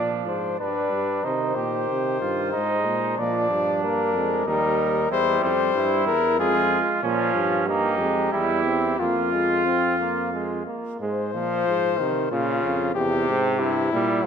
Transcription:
0.00 0.29 A#2 medium
0.00 0.57 F3 medium
0.00 0.56 D4 medium
0.00 0.11 D5 medium
0.28 0.60 G#2 soft
0.28 0.59 C5 medium
0.59 0.92 G2 medium
0.59 1.27 G3 medium
0.59 1.25 D4 medium
0.59 1.23 B4 medium
0.92 1.24 G2 medium
1.24 1.56 C3 medium
1.24 2.54 D#3 medium
1.24 1.57 D#4 medium
1.24 3.21 C5 medium
1.55 1.88 A#2 medium
1.55 2.20 G4 medium
1.89 2.21 C3 medium
2.20 2.55 G2 medium
2.20 2.51 F4 medium
2.52 2.87 G#2 medium
2.52 3.18 G#3 medium
2.52 3.16 D#4 medium
2.86 3.18 A#2 medium
3.17 3.50 A#2 medium
3.17 3.85 F3 medium
3.17 4.44 D4 medium
3.17 3.84 D5 medium
3.51 4.16 G2 medium
3.84 4.16 A#3 medium
3.84 4.46 A#4 medium
4.15 4.46 F2 medium
4.15 4.47 G#3 medium
4.46 5.09 D#2 medium
4.46 5.10 G3 medium
4.46 5.09 D#4 medium
4.46 5.10 A#4 medium
5.10 5.41 E2 medium
5.10 6.09 G3 medium
5.10 5.51 E4 medium
5.10 5.42 C5 medium
5.41 5.73 F2 medium
5.41 6.06 C5 medium
5.74 6.06 G2 medium
5.74 6.35 E4 medium
6.06 6.40 E2 medium
6.06 6.38 A#4 medium
6.38 6.80 F2 medium
6.38 6.99 G#3 medium
6.38 7.02 F4 medium
6.38 6.80 G#4 medium
7.03 7.33 A#2 medium
7.03 7.69 F3 medium
7.03 7.66 C#4 medium
7.03 7.64 F4 medium
7.34 8.01 G2 medium
7.68 7.99 A#3 medium
7.68 8.32 D#4 medium
7.68 8.32 G4 medium
8.00 8.32 F2 medium
8.00 8.32 G#3 medium
8.32 8.98 E2 medium
8.32 8.64 G3 medium
8.32 8.98 E4 medium
8.32 9.02 G4 medium
8.65 8.98 C4 medium
8.99 10.64 F2 medium
8.99 9.34 A#3 medium
8.99 10.64 F4 medium
8.99 10.67 F4 medium
9.32 9.65 G#3 medium
9.66 9.99 C4 medium
9.99 10.32 A#3 medium
10.33 10.66 G#3 medium
10.66 11.00 A#3 medium
11.00 11.35 G#2 medium
11.00 11.31 G#3 medium
11.00 12.28 C5 medium
11.34 11.66 A#2 medium
11.34 12.01 F3 medium
11.67 12.01 G#2 medium
11.99 12.31 C3 medium
11.99 12.31 D#3 medium
12.31 12.63 A#2 medium
12.31 12.94 C#3 loud
12.31 12.94 F4 medium
12.63 12.95 F2 medium
12.95 13.27 E2 medium
12.95 13.91 C3 loud
12.95 13.61 G4 medium
13.28 13.62 G#2 medium
13.60 13.92 G2 medium
13.60 14.27 E4 medium
13.92 14.26 A#2 medium
13.92 14.26 G3 loud

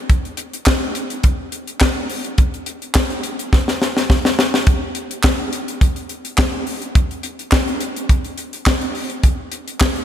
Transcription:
0.10 kick loud
0.10 closed hi-hat medium
0.25 closed hi-hat soft
0.37 closed hi-hat medium
0.53 closed hi-hat medium
0.66 kick loud
0.66 snare loud
0.66 clap medium
0.95 closed hi-hat medium
1.10 closed hi-hat medium
1.23 kick loud
1.23 closed hi-hat medium
1.52 closed hi-hat medium
1.67 closed hi-hat soft
1.80 kick loud
1.80 snare loud
1.80 clap medium
2.09 open hi-hat medium
2.24 closed hi-hat medium
2.38 kick loud
2.38 closed hi-hat medium
2.54 closed hi-hat soft
2.66 closed hi-hat medium
2.82 closed hi-hat soft
2.94 kick loud
2.94 snare loud
2.94 clap loud
3.10 closed hi-hat soft
3.23 closed hi-hat medium
3.39 closed hi-hat medium
3.53 kick loud
3.53 snare medium
3.68 snare medium
3.82 snare medium
3.97 snare medium
4.10 kick loud
4.10 snare medium
4.25 snare medium
4.39 snare loud
4.54 snare medium
4.67 kick loud
4.67 closed hi-hat medium
4.95 closed hi-hat medium
5.11 closed hi-hat medium
5.23 kick loud
5.23 snare loud
5.23 clap medium
5.53 closed hi-hat medium
5.68 closed hi-hat medium
5.81 kick loud
5.81 closed hi-hat medium
5.96 closed hi-hat soft
6.09 closed hi-hat medium
6.25 closed hi-hat medium
6.38 kick loud
6.38 snare loud
6.38 clap medium
6.67 open hi-hat medium
6.82 closed hi-hat medium
6.95 kick loud
6.95 closed hi-hat medium
7.11 closed hi-hat soft
7.23 closed hi-hat medium
7.39 closed hi-hat medium
7.52 kick loud
7.52 snare loud
7.52 clap medium
7.68 closed hi-hat soft
7.80 closed hi-hat medium
7.96 closed hi-hat medium
8.09 kick loud
8.09 closed hi-hat medium
8.25 closed hi-hat soft
8.38 closed hi-hat medium
8.53 closed hi-hat soft
8.66 kick loud
8.66 snare loud
8.66 clap medium
8.81 closed hi-hat soft
8.95 open hi-hat medium
9.10 closed hi-hat soft
9.23 kick loud
9.23 closed hi-hat medium
9.52 closed hi-hat medium
9.68 closed hi-hat medium
9.80 kick loud
9.80 snare loud
9.80 clap loud
9.96 closed hi-hat soft

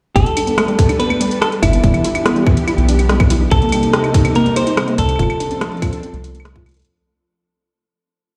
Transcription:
0.16 0.24 G1 loud
0.16 1.82 G3 medium
0.16 1.82 D4 medium
0.16 0.20 G4 loud
0.16 0.99 A4 loud
0.16 1.82 A4 medium
0.16 1.82 B4 medium
0.16 kick loud
0.16 closed hi-hat soft
0.26 closed hi-hat soft
0.37 0.41 D4 medium
0.37 closed hi-hat medium
0.37 claves medium
0.47 0.54 B3 medium
0.47 closed hi-hat medium
0.58 0.67 A3 loud
0.58 cross-stick loud
0.58 closed hi-hat medium
0.58 claves medium
0.68 0.75 G3 loud
0.68 closed hi-hat soft
0.79 0.83 G4 loud
0.79 kick loud
0.79 closed hi-hat medium
0.89 0.96 D4 medium
0.89 closed hi-hat soft
0.89 claves soft
1.00 1.06 B3 medium
1.00 1.41 B4 loud
1.00 closed hi-hat medium
1.10 1.20 A3 medium
1.10 closed hi-hat soft
1.10 claves medium
1.21 1.30 G3 loud
1.21 closed hi-hat medium
1.31 closed hi-hat medium
1.42 1.46 G4 loud
1.42 1.47 A4 loud
1.42 cross-stick loud
1.42 closed hi-hat medium
1.42 claves medium
1.52 closed hi-hat soft
1.62 1.79 G1 medium
1.62 1.67 D4 medium
1.62 2.42 E4 medium
1.62 kick medium
1.62 closed hi-hat loud
1.62 claves medium
1.73 1.80 B3 medium
1.73 closed hi-hat medium
1.84 1.92 E1 loud
1.84 3.50 E3 medium
1.84 1.93 G3 loud
1.84 3.50 B3 medium
1.84 3.50 D4 medium
1.84 3.50 G4 medium
1.84 kick loud
1.84 closed hi-hat soft
1.94 2.01 E3 loud
1.94 closed hi-hat soft
1.94 claves soft
2.04 2.09 E4 loud
2.04 closed hi-hat medium
2.15 2.22 D4 medium
2.15 closed hi-hat medium
2.15 claves medium
2.26 2.32 B3 medium
2.26 cross-stick loud
2.26 closed hi-hat medium
2.36 2.46 G3 medium
2.36 closed hi-hat soft
2.47 2.56 E3 loud
2.47 kick loud
2.47 claves medium
2.57 closed hi-hat medium
2.67 2.71 E4 loud
2.67 closed hi-hat medium
2.67 claves medium
2.78 3.47 B1 loud
2.78 closed hi-hat soft
2.89 2.92 D4 medium
2.89 closed hi-hat medium
2.99 3.06 B3 medium
2.99 closed hi-hat medium
2.99 claves soft
3.09 3.19 G3 loud
3.09 cross-stick loud
3.09 closed hi-hat medium
3.20 3.27 E3 loud
3.20 kick loud
3.20 closed hi-hat soft
3.20 claves medium
3.30 3.34 E4 medium
3.30 closed hi-hat loud
3.41 3.48 D4 medium
3.51 3.59 C2 loud
3.51 5.18 C3 medium
3.51 5.18 G3 medium
3.51 5.18 A#3 medium
3.51 3.58 C4 medium
3.51 5.18 D#4 medium
3.51 4.35 A4 medium
3.51 kick loud
3.51 closed hi-hat soft
3.51 claves soft
3.62 3.72 A#3 medium
3.62 closed hi-hat soft
3.69 3.82 G3 loud
3.69 closed hi-hat soft
3.72 closed hi-hat medium
3.72 claves medium
3.76 closed hi-hat soft
3.83 closed hi-hat medium
3.93 3.97 G4 loud
3.93 cross-stick loud
3.93 closed hi-hat medium
4.04 closed hi-hat soft
4.04 claves medium
4.14 4.18 D#4 medium
4.14 kick loud
4.14 closed hi-hat medium
4.25 4.31 C4 medium
4.25 closed hi-hat medium
4.25 claves medium
4.35 4.45 A#3 loud
4.35 4.55 A#4 medium
4.35 closed hi-hat medium
4.46 4.52 G3 loud
4.46 closed hi-hat soft
4.56 4.60 G4 loud
4.56 4.98 C5 loud
4.56 closed hi-hat medium
4.56 claves soft
4.67 4.73 D#4 medium
4.67 closed hi-hat medium
4.77 4.84 C4 medium
4.77 cross-stick loud
4.77 closed hi-hat medium
4.77 claves medium
4.88 4.98 A#3 medium
4.88 closed hi-hat soft
4.98 5.14 C2 medium
4.98 5.08 G3 loud
4.98 6.41 A4 medium
4.98 kick medium
4.98 closed hi-hat medium
5.09 closed hi-hat soft
5.09 claves soft
5.16 5.27 F1 loud
5.16 6.85 F3 medium
5.16 6.85 C4 medium
5.16 6.85 D4 medium
5.16 5.23 F4 loud
5.16 6.85 A4 medium
5.16 kick loud
5.16 closed hi-hat soft
5.16 claves soft
5.23 claves soft
5.30 closed hi-hat soft
5.30 claves medium
5.40 5.44 D4 medium
5.40 closed hi-hat medium
5.51 5.57 C4 medium
5.51 closed hi-hat soft
5.61 5.71 A3 loud
5.61 cross-stick loud
5.61 closed hi-hat medium
5.61 claves soft
5.72 5.78 F3 loud
5.72 closed hi-hat soft
5.77 closed hi-hat soft
5.82 5.86 F4 loud
5.82 kick loud
5.82 closed hi-hat medium
5.82 claves medium
5.87 closed hi-hat soft
5.93 5.99 D4 medium
5.93 closed hi-hat soft
6.03 6.10 C4 medium
6.03 closed hi-hat soft
6.14 6.83 C2 loud
6.14 6.23 A3 medium
6.14 closed hi-hat soft
6.24 6.31 F4 medium
6.24 closed hi-hat medium
6.34 6.41 A3 medium
6.34 closed hi-hat medium
6.40 claves medium
6.45 6.52 A3 loud
6.45 cross-stick loud
6.45 closed hi-hat medium
6.55 6.65 F4 loud
6.55 kick loud
6.66 6.76 A3 medium
6.66 closed hi-hat soft
6.66 claves soft
6.69 closed hi-hat soft
6.71 closed hi-hat medium
6.74 6.80 A4 medium
6.74 closed hi-hat medium
6.77 closed hi-hat medium
6.79 closed hi-hat medium
6.82 closed hi-hat medium
6.85 closed hi-hat medium

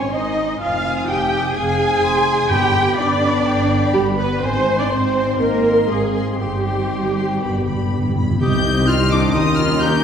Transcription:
0.00 0.61 G#1 medium
0.00 0.46 D#3 medium
0.00 0.46 C4 medium
0.00 0.15 C#4 medium
0.00 0.12 C#5 medium
0.00 0.15 C#5 medium
0.00 0.32 G#5 medium
0.00 0.59 C6 medium
0.14 0.62 D#4 medium
0.14 0.61 D#5 medium
0.14 0.62 D#5 medium
0.61 1.04 F1 medium
0.61 1.52 D#3 medium
0.61 1.52 C4 medium
0.61 1.08 F4 medium
0.61 1.08 F5 medium
0.61 1.08 F5 loud
0.61 1.51 G#5 medium
0.85 1.31 D#6 medium
1.08 1.50 F1 medium
1.08 1.55 G4 medium
1.08 1.54 G5 medium
1.08 1.55 G5 medium
1.32 1.78 D#6 medium
1.55 1.98 F1 medium
1.55 2.49 D#3 medium
1.55 2.49 C4 medium
1.55 2.50 G#4 medium
1.55 2.05 F5 medium
1.55 2.49 G#5 loud
1.55 2.51 G#5 loud
1.79 2.25 D#6 medium
2.03 2.45 F1 medium
2.03 2.52 C6 medium
2.27 2.50 D#6 medium
2.49 2.92 G1 medium
2.49 3.18 G2 medium
2.49 2.96 D3 medium
2.49 2.96 B3 medium
2.49 2.97 G4 medium
2.49 2.98 G5 loud
2.49 2.99 G5 medium
2.49 3.47 B5 medium
2.49 2.73 B5 medium
2.74 3.21 B5 medium
2.97 3.40 G1 medium
2.97 3.92 D3 medium
2.97 3.92 B3 medium
2.97 3.94 D4 loud
2.97 3.92 D5 loud
3.22 3.68 B5 medium
3.46 3.88 G1 medium
3.46 3.96 G5 medium
3.70 4.16 B5 medium
3.93 4.37 G1 medium
3.93 4.42 D3 medium
3.93 4.18 G3 medium
3.93 4.42 B3 medium
3.93 4.01 G4 medium
3.93 4.19 G4 medium
3.93 4.42 B5 medium
4.17 4.42 B3 medium
4.17 4.42 B4 loud
4.17 4.43 B4 medium
4.17 4.42 B5 medium
4.42 4.85 G#1 medium
4.42 4.90 D#3 medium
4.42 4.78 C4 medium
4.42 4.90 C4 medium
4.42 4.79 C5 loud
4.42 4.78 C5 medium
4.42 4.92 G#5 medium
4.66 5.14 C6 medium
4.78 4.83 D4 medium
4.78 4.91 D5 medium
4.90 5.33 G#1 medium
4.90 5.87 D#3 medium
4.90 5.38 C4 medium
4.90 5.87 C4 medium
4.90 5.39 C5 medium
4.90 5.39 C6 medium
5.15 5.63 C6 medium
5.39 5.83 G#1 medium
5.39 5.89 A#3 medium
5.39 5.88 A#4 loud
5.39 5.88 A#4 medium
5.39 5.92 D#5 medium
5.65 6.12 C6 medium
5.89 6.34 G#1 medium
5.89 6.39 D#3 medium
5.89 6.39 G#3 medium
5.89 6.39 C4 medium
5.89 6.38 G#4 medium
5.89 6.39 G#4 medium
5.89 6.42 F5 medium
6.13 6.38 C6 medium
6.39 6.85 G1 medium
6.39 7.40 D#3 medium
6.39 8.13 G3 medium
6.39 7.40 C4 medium
6.39 8.13 G4 medium
6.39 8.17 G5 medium
6.39 6.63 C6 medium
6.64 7.14 C6 medium
6.92 7.36 G1 medium
7.16 7.41 C6 soft
7.41 7.86 G1 medium
7.41 7.49 G2 soft
7.41 8.17 D3 medium
7.41 8.17 B3 medium
7.41 7.64 B5 medium
7.50 7.57 G2 soft
7.58 7.65 G2 soft
7.65 7.73 G2 soft
7.65 8.15 B5 medium
7.74 7.81 G2 soft
7.83 7.90 G2 soft
7.91 8.36 G1 medium
7.91 7.98 G2 medium
7.99 8.06 G2 medium
8.07 8.14 G2 medium
8.15 8.22 G2 medium
8.15 8.40 B5 medium
8.23 8.29 G2 medium
8.30 8.37 G2 medium
8.39 9.31 C2 medium
8.39 9.36 C2 medium
8.39 9.31 C2 medium
8.39 9.08 C3 loud
8.39 10.04 D#3 medium
8.39 9.30 G3 medium
8.39 9.30 C4 medium
8.39 9.31 C4 medium
8.39 10.04 D#4 medium
8.39 10.04 G4 medium
8.39 8.85 G4 loud
8.39 10.04 D#5 medium
8.39 8.85 D#6 medium
8.39 8.85 G6 loud
8.87 8.99 F4 medium
8.87 9.33 C6 medium
8.87 9.12 F6 loud
9.12 9.34 D4 medium
9.12 9.35 D6 medium
9.34 10.04 D#2 medium
9.34 10.04 A#3 medium
9.34 10.04 C#4 medium
9.34 9.46 D#4 medium
9.34 9.83 C6 medium
9.34 9.58 D#6 loud
9.57 9.83 F4 medium
9.57 9.80 F6 loud
9.81 10.04 G4 loud
9.81 10.04 A#5 medium
9.81 10.04 G6 loud

